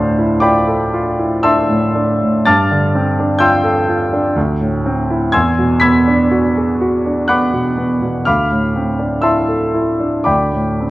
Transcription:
0.00 2.41 D2 soft
0.00 1.69 A2 soft
0.00 0.33 D4 soft
0.00 0.38 C5 medium
0.00 0.38 F5 medium
0.00 0.38 A5 medium
0.00 0.41 C6 medium
0.19 0.58 E4 soft
0.40 0.82 F4 soft
0.40 1.37 D5 medium
0.40 1.36 G5 medium
0.40 1.37 B5 medium
0.40 1.40 D6 medium
0.67 1.06 A4 soft
0.93 1.32 F4 soft
1.19 1.57 E4 soft
1.43 1.84 D4 soft
1.43 2.43 E5 medium
1.43 2.43 A5 medium
1.43 2.43 C6 medium
1.43 2.46 E6 medium
1.69 2.11 A2 soft
1.95 2.36 D4 soft
2.23 2.47 A2 soft
2.45 4.32 G2 medium
2.45 3.37 A5 medium
2.45 3.37 D6 medium
2.45 3.37 F6 medium
2.45 3.40 A6 medium
2.71 3.08 D3 soft
2.95 3.32 C4 soft
3.19 3.56 D4 soft
3.39 3.78 F4 soft
3.39 5.30 G5 medium
3.39 5.29 C6 medium
3.39 5.30 E6 medium
3.39 5.33 G6 medium
3.64 4.02 A4 soft
3.89 4.27 F4 soft
4.13 4.36 D4 soft
4.36 5.31 D2 medium
4.61 5.00 A2 soft
4.86 5.24 C4 soft
5.10 5.34 E4 soft
5.32 8.22 E2 medium
5.32 5.79 G#5 medium
5.32 5.79 C6 medium
5.32 5.79 E6 medium
5.32 5.80 G#6 medium
5.59 5.98 B2 soft
5.80 6.22 B3 soft
5.80 7.25 B5 medium
5.80 7.25 E6 medium
5.80 7.25 G#6 medium
5.80 7.29 B6 medium
6.08 6.47 D4 soft
6.31 6.71 F#4 soft
6.57 6.97 G#4 soft
6.81 7.20 F#4 soft
7.06 7.45 D4 soft
7.28 7.68 B3 soft
7.28 8.21 F#5 medium
7.28 8.21 B5 medium
7.28 8.21 D6 medium
7.28 8.25 F#6 medium
7.53 7.92 B2 soft
7.78 8.16 B3 soft
8.02 8.26 B2 soft
8.26 10.24 D2 soft
8.26 9.21 F5 medium
8.26 9.21 B5 medium
8.26 9.21 D6 medium
8.26 9.24 F6 medium
8.51 8.90 A2 soft
8.76 9.15 C4 soft
8.99 9.40 D4 soft
9.22 9.64 E4 soft
9.22 10.22 E5 soft
9.22 10.22 A5 soft
9.22 10.22 C6 soft
9.22 10.26 E6 medium
9.48 9.90 A4 soft
9.74 10.16 E4 soft
10.00 10.27 D4 soft
10.24 10.90 D2 soft
10.24 10.90 D5 soft
10.24 10.90 G5 soft
10.24 10.90 B5 soft
10.24 10.90 D6 medium
10.53 10.90 A2 soft
10.81 10.90 C4 soft

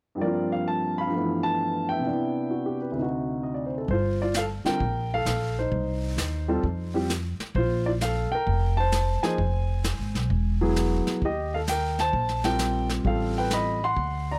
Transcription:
0.15 1.05 G2 soft
0.15 1.11 G3 soft
0.20 1.08 F3 soft
0.20 1.13 A#3 soft
0.20 0.53 D5 medium
0.24 1.14 C4 soft
0.24 1.15 F4 medium
0.24 1.10 A#4 medium
0.52 0.67 F5 medium
0.68 0.99 A5 medium
0.98 1.87 F5 medium
0.98 1.45 B5 medium
1.07 2.02 G2 soft
1.07 2.03 F3 soft
1.12 2.04 A3 soft
1.12 2.01 B3 soft
1.18 2.07 E3 soft
1.43 1.86 A5 medium
1.89 2.79 E5 soft
1.89 2.77 G5 medium
1.99 2.94 C3 soft
1.99 2.95 B3 soft
2.06 2.97 D4 soft
2.06 2.99 E4 soft
2.51 2.79 F#4 soft
2.66 2.90 G4 soft
2.81 3.05 B4 soft
2.92 3.86 D2 soft
2.92 3.88 C3 soft
2.99 3.89 D#4 soft
2.99 3.91 F#4 soft
3.43 3.64 D#5 soft
3.54 3.74 D5 soft
3.66 3.80 C5 soft
3.78 3.93 A4 soft
3.88 4.61 G1 medium
3.88 4.21 C5 medium
3.88 brush sweep soft
3.88 kick soft
3.93 4.19 F4 medium
4.22 4.35 F4 medium
4.22 4.35 D5 medium
4.34 4.43 F5 medium
4.34 snare medium
4.34 hi-hat pedal medium
4.39 4.45 A4 medium
4.64 4.78 D3 medium
4.64 4.79 G3 soft
4.64 4.79 C4 soft
4.64 4.79 F4 medium
4.64 5.09 A#4 medium
4.64 5.13 G5 loud
4.64 muted upright bass stroke soft
4.64 snare soft
4.80 5.23 A#1 medium
4.80 brush sweep soft
4.80 kick soft
5.14 5.56 A4 medium
5.14 5.55 F5 loud
5.25 5.68 A#1 medium
5.25 snare medium
5.25 hi-hat pedal soft
5.59 6.92 D#4 medium
5.59 6.91 C5 medium
5.71 6.14 C2 medium
5.71 brush sweep soft
5.71 kick soft
6.16 6.60 D#2 medium
6.16 snare medium
6.16 hi-hat pedal medium
6.48 6.62 G3 medium
6.48 6.62 C4 medium
6.48 6.62 F4 medium
6.48 6.63 A4 medium
6.63 7.36 F2 medium
6.63 brush sweep soft
6.63 kick soft
6.94 7.08 G3 medium
6.94 7.08 C4 medium
6.94 7.08 F4 medium
6.94 7.09 G4 medium
7.09 snare medium
7.09 hi-hat pedal medium
7.39 muted upright bass stroke soft
7.39 snare soft
7.55 8.27 A#1 medium
7.55 7.85 F4 medium
7.55 7.87 C5 medium
7.55 brush sweep soft
7.55 kick soft
7.86 7.93 F4 medium
7.86 7.91 D5 medium
8.01 8.30 F5 medium
8.01 snare soft
8.01 hi-hat pedal soft
8.05 8.32 A4 medium
8.31 8.76 A#4 medium
8.31 8.79 G5 medium
8.31 muted upright bass stroke soft
8.46 9.19 F1 medium
8.46 brush sweep soft
8.46 kick soft
8.77 9.22 C5 medium
8.77 9.20 A5 medium
8.92 snare medium
8.92 hi-hat pedal soft
9.23 9.37 F3 medium
9.23 9.37 A#3 medium
9.23 9.37 D#4 medium
9.23 9.37 G#4 medium
9.23 10.28 C5 medium
9.23 10.56 G#5 medium
9.23 snare soft
9.38 9.95 F1 medium
9.38 brush sweep soft
9.38 kick soft
9.84 snare medium
9.84 hi-hat pedal medium
9.99 10.13 G#1 soft
10.14 10.29 B1 medium
10.14 snare soft
10.30 11.03 E1 medium
10.30 brush sweep soft
10.30 kick soft
10.61 11.19 F#3 medium
10.61 11.19 B3 medium
10.61 11.19 E4 medium
10.61 11.19 G#4 medium
10.76 snare medium
10.76 hi-hat pedal soft
11.06 muted upright bass stroke soft
11.06 snare soft
11.21 12.09 D#2 medium
11.21 11.52 G4 medium
11.21 11.55 D#5 medium
11.21 brush sweep soft
11.21 kick soft
11.54 11.61 A4 medium
11.54 11.59 F5 medium
11.67 12.00 G5 medium
11.67 snare medium
11.67 hi-hat pedal medium
11.71 11.98 A#4 medium
11.99 12.43 C5 medium
11.99 12.42 A5 loud
11.99 snare soft
12.13 13.01 A#1 medium
12.13 brush sweep soft
12.13 kick soft
12.29 snare soft
12.44 13.02 G3 soft
12.44 13.02 C4 soft
12.44 13.03 F4 soft
12.44 13.03 A#4 medium
12.44 12.87 G5 medium
12.44 snare soft
12.59 snare medium
12.59 hi-hat pedal soft
12.89 snare soft
13.04 13.92 A1 medium
13.04 13.75 G3 soft
13.04 13.76 C4 soft
13.04 13.76 F4 soft
13.04 13.76 A4 medium
13.04 13.38 F5 medium
13.04 brush sweep soft
13.04 kick soft
13.38 13.51 B4 medium
13.38 13.52 G5 medium
13.50 13.81 D#5 medium
13.50 13.84 B5 medium
13.50 snare medium
13.50 hi-hat pedal soft
13.84 14.26 F#5 medium
13.84 14.30 C6 loud
13.96 14.39 D2 medium
13.96 brush sweep soft
13.96 kick soft
14.31 14.39 D5 medium
14.31 14.39 A#5 medium

